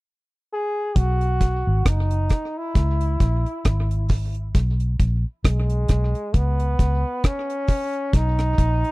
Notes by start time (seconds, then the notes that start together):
0.53 G#4
0.96 B1 F#4, kick, closed hi-hat
1.21 closed hi-hat
1.41 kick, closed hi-hat
1.67 G#1
1.86 F#1 D#4, kick, cross-stick, closed hi-hat
2.11 closed hi-hat
2.29 kick, cross-stick, closed hi-hat
2.57 E4
2.75 C#2, kick, closed hi-hat
3.01 closed hi-hat
3.20 A#1, kick, closed hi-hat
3.46 closed hi-hat
3.65 G#1, kick, cross-stick, closed hi-hat
3.91 closed hi-hat
4.09 kick, open hi-hat
4.34 closed hi-hat
4.55 B1, kick, closed hi-hat
4.80 closed hi-hat
5.00 A#1, kick, closed hi-hat
5.45 B1 G#3, kick, cross-stick, closed hi-hat
5.70 closed hi-hat
5.88 B1, kick, cross-stick, closed hi-hat
6.15 closed hi-hat
6.34 C#2 B3, kick, closed hi-hat
6.60 closed hi-hat
6.79 C#2, kick, closed hi-hat
7.24 C#4, kick, cross-stick, closed hi-hat
7.50 closed hi-hat
7.68 kick, open hi-hat
7.93 closed hi-hat
8.13 B1 D#4, kick, closed hi-hat
8.39 cross-stick, closed hi-hat
8.58 A#1, kick, closed hi-hat
8.84 closed hi-hat